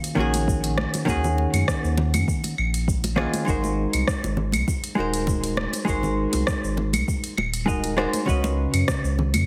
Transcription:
Already playing: D#3 A#3 C#4 F4 F#4 G#4
0.04 closed hi-hat, shaker
0.15 A#1 D#3 A#3 C#4 F#4
0.20 G#4
0.34 closed hi-hat, muted conga, shaker
0.48 kick, shaker
0.64 closed hi-hat, shaker
0.78 cross-stick, high conga
0.94 closed hi-hat, muted conga, shaker
1.05 D#2 D#3 A#3 C#4 F#4, kick, shaker
1.10 G#4
1.24 low conga, shaker
1.38 muted conga
1.53 F#2, closed hi-hat, high conga, claves, shaker
1.68 kick, cross-stick, shaker
1.84 D#2, shaker
1.98 muted conga, low conga
2.14 F#2, closed hi-hat, high conga, claves, shaker
2.28 kick, shaker
2.44 closed hi-hat, muted conga, shaker
2.58 A#1, claves
2.74 closed hi-hat, shaker
2.88 kick, shaker
3.04 closed hi-hat, muted conga, shaker
3.16 D#3 A#3 C#4 F4 F#4 G#4, cross-stick
3.34 closed hi-hat, high conga, shaker
3.45 G#1 G#3 D#4 F#4 A#4, kick, shaker
3.50 C5
3.64 muted conga, shaker
3.93 C2, closed hi-hat, claves, shaker
4.08 kick, cross-stick, shaker
4.23 G#1, muted conga, shaker
4.37 low conga
4.52 C2, closed hi-hat, high conga, claves, shaker
4.68 kick, muted conga, shaker
4.84 closed hi-hat, shaker
4.95 D#1 G#3 D#4 F#4 A#4
5.00 C5
5.14 closed hi-hat, shaker
5.27 kick, muted conga, shaker
5.44 closed hi-hat, shaker
5.57 cross-stick, high conga
5.73 closed hi-hat, muted conga, shaker
5.85 G#1 G#3 D#4 F#4 A#4, kick, shaker
5.90 C5
6.03 low conga, shaker
6.33 C2, closed hi-hat, muted conga, high conga, shaker
6.47 kick, cross-stick, shaker
6.63 G#1, shaker
6.77 muted conga, low conga
6.93 C2, closed hi-hat, high conga, claves, shaker
7.08 kick, shaker
7.24 closed hi-hat, shaker
7.37 D#1, muted conga, claves
7.54 closed hi-hat, shaker
7.66 G#3 D#4 F#4 A#4 D#5, kick, shaker
7.84 closed hi-hat, muted conga, shaker
7.97 G#3 D#4 F#4 A#4 C5, cross-stick
8.13 closed hi-hat, high conga, shaker
8.25 C#2 C#3 C#4 F#4 B4, kick, shaker
8.30 D#5
8.44 muted conga, shaker
8.73 F#2, closed hi-hat, claves, shaker
8.88 kick, cross-stick, muted conga, shaker
9.04 C#2, shaker
9.19 low conga
9.34 F#2, closed hi-hat, high conga, claves, shaker

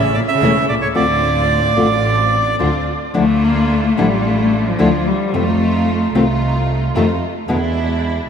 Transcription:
Already playing: A1 C#3 A3 C#4 E4 E5
0.14 A#2 D5
0.28 C#3 E5
0.41 E1 E3 A3 C#4 E4
0.69 C2 A#2 D5
0.82 A2 C#5
0.94 D2 A2 D3 A3 C4 D4 F4 D5
1.77 A1 D3 A3 C4 D4 F4
2.59 D2 D3 A3 C4 D4 F4
3.14 D2 D3 F3 A3 D4 E4 F4
3.18 A3
3.44 A#3
3.72 A3
3.97 A1 D3 F3 G3 A3 D4 E4 F4
4.26 A3
4.67 F3
4.79 D2 D3 F3 A3 D4 E4 F4
5.07 G3
5.33 F2 C3 D#3 A3 C4 D#4 F4
6.14 C2 C3 D#3 A3 C4 D#4 F4
6.94 F2 C3 D#3 A3 C4 D#4 F4
7.47 E2 B2 D3 G#3 B3 D4 E4

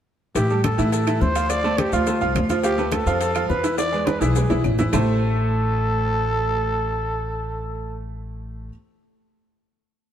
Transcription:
0.35 A1 E3 E4 G4 E5, high bongo, high conga, high timbale, maracas
0.50 G3 G4 A4, high conga, maracas
0.64 A4, high bongo, high conga, high timbale, claves, maracas
0.78 A2 E3 E4 E5, high bongo, high conga, maracas
0.92 A4, high bongo, high conga, high timbale, maracas
1.07 E3 E4 E5, high bongo, high conga, high timbale, claves, maracas
1.21 D2 C5, high bongo, low bongo, high conga, maracas
1.35 F3 F4 F5, high bongo, high conga, high timbale, maracas
1.50 D5, high bongo, high conga, high timbale, claves, maracas
1.64 A3 A4 C5, high conga, maracas
1.78 G4, high bongo, high conga, high timbale, claves, maracas
1.92 D2 F3 F4 F5, high bongo, high conga, maracas
2.07 A3 A4 C5, high bongo, high conga, high timbale, maracas
2.21 C2 F3 F4 F5, high bongo, high conga, maracas
2.35 D2, high bongo, low bongo, high conga, high timbale, low timbale, claves, maracas
2.49 F3 F4 F5, high bongo, high conga, high timbale, maracas
2.63 F3 F4 G4 F5, high bongo, high conga, high timbale, maracas
2.77 A3 A4 B4, high conga, maracas
2.92 A4, high bongo, high conga, high timbale, claves, maracas
3.06 F2 F3 F4 F5, high bongo, high conga, maracas
3.20 A4, high bongo, high conga, high timbale, maracas
3.35 F3 F4 F5, high bongo, high conga, high timbale, claves, maracas
3.49 E2 B4, high bongo, low bongo, high conga, maracas
3.64 E3 E4 E5, high bongo, high conga, high timbale, maracas
3.78 D5, high bongo, high conga, high timbale, claves, maracas
3.92 G#3 G#4 B4, high conga, maracas
4.06 B4, high bongo, high conga, high timbale, claves, maracas
4.20 B1 E3 E4 G#4 E5, high bongo, high conga, maracas
4.35 G#3 G#4 B4, high bongo, high conga, low timbale, maracas
4.50 B1 E3 E4 E5, low bongo, high conga, low timbale, maracas
4.64 A1, low bongo, high conga, claves, maracas
4.79 E3 E4 E5, low bongo, high conga, low timbale, maracas
4.93 A1 A3 E4 G4 A4 C5 E5, low bongo, low conga, low timbale, claves, maracas

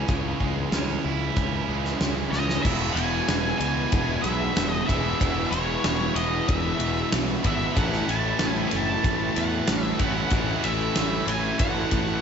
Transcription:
Already playing: E3 G#3 C#4 E4
0.07 C#2 C#3 E3 G#3 C#4, kick, closed hi-hat
0.40 C#2 G#3, kick
0.72 C#2 C#4, snare, closed hi-hat
1.04 C#2 E4
1.36 C#2 C#4, kick, closed hi-hat
1.68 C#2 C#3 E3 G#3 C#4
1.85 snare
2.00 C#2 C#3 E3 G#3 C#4, snare, closed hi-hat
2.32 C#2 C#4 D#5, snare
2.49 snare
2.63 E1 E2 B2 E3 G#3 B3 E4 G#4 B4 E5, kick, crash, shaker
2.67 E4
2.93 E1 E2 G#5
2.97 B2 E3, ride, shaker
3.29 E1 E2 B2 E3, snare, ride, shaker
3.58 C#2 E2 B2 E3 G#5, ride, shaker
3.92 E1 E2 B2 E3, kick, ride, shaker
4.22 B1 E2 B2 E3 E5, ride
4.56 E1 E2 B2 E3, snare, ride, shaker
4.70 D#5
4.87 E1 E2 B2 E3 G#3 B3 E4 E5, kick, ride, shaker
5.05 shaker
5.20 E1 E2 B2 E3 G#3 B3 E4 G#4 B4, kick, ride, shaker
5.51 E1 E2 B2 E3 C#5, ride, shaker
5.84 E1 E2 B2 E3, snare, ride, shaker
6.16 E1 E2 B2 E3 D#5, ride, shaker
6.48 E1 E2 B2 E3 E5, kick, ride, shaker
6.79 E1 E2 B2 E3, ride, shaker
6.97 shaker
7.12 B1 E2 B2 E3, snare, ride, shaker
7.43 G#1 E2 B2 E3 G#3 B3 E4 E5, kick, ride, shaker
7.61 shaker
7.75 A1 A2 E3 A3 C#4 D4 E4 F4 G4 A#4 F#5, kick, ride, shaker
7.92 C#4 E4 F#4 A4, snare
8.07 A1 A2 E3 A3 A5, ride, shaker
8.39 A1 A2 E3 A3, snare, ride, shaker
8.47 G#5
8.68 G#5, ride
8.72 F#1 A2 E3 A3, shaker
8.76 A5
9.04 A1 A2 E3 A3, kick, ride, shaker
9.35 E2 A2 E3 A3 F#5, ride, shaker
9.53 shaker
9.67 A1 A2 E3 A3, snare, ride, shaker
9.83 E5
9.99 A1 A2 E3 A3 C#4 E4 F#5, kick, ride, shaker
10.16 shaker
10.29 A1 A2 E3 A3 C#4 E4 F#4, kick, ride, shaker
10.34 E4
10.48 shaker
10.63 A1 A2 E3 A3 E5, ride, shaker
10.80 shaker
10.95 A1 A2 E3 A3, snare, ride, shaker
11.13 shaker
11.26 A1 A2 E3 A3 G#5, ride, shaker
11.45 shaker
11.58 A1 A2 E3 A3 F#5, kick, ride, shaker
11.76 shaker
11.91 A1 A2 E3 A3, kick, ride, shaker
12.07 shaker

